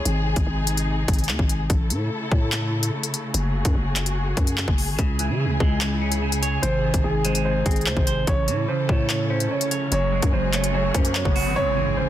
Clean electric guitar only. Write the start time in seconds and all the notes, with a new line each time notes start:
4.99 C#3
5.19 E3
5.40 C#3
5.60 G#3
5.81 C#3
6.01 C#4
6.22 C#3
6.43 C#5
6.63 C3
6.84 D#3
7.04 C3
7.25 G#3
7.45 C3
7.66 C4
7.86 C3
8.07 C5
8.27 C#3
8.48 E3
8.69 C#3
8.89 A3
9.10 C#3
9.30 C#4
9.51 C#3
9.71 C#5
9.92 F#3
10.12 G#3
10.33 F#3
10.53 A3
10.74 F#3
10.95 C#4
11.15 F#3
11.36 F#4
11.56 C#3
11.77 E3
11.97 C#3